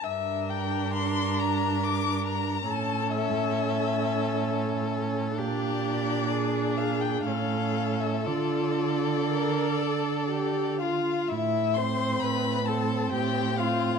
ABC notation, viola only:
X:1
M:3/4
L:1/8
Q:1/4=66
K:Dm
V:1 name="Viola"
D6 | ^C6 | D4 ^C2 | F2 B A G F |
[K:Am] z C2 C2 C |]